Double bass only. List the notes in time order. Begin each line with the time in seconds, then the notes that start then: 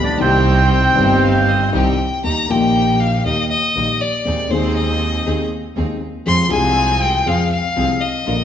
Already playing: A#1
0.22 C2
0.97 G1
1.74 C2
2.25 D#2
2.50 A#1
3.25 D#2
3.75 A#1
4.26 D#2
4.51 D#2
5.27 D#2
5.76 D#2
6.26 F2
6.51 C2
7.26 F2
7.77 C2
8.27 A#1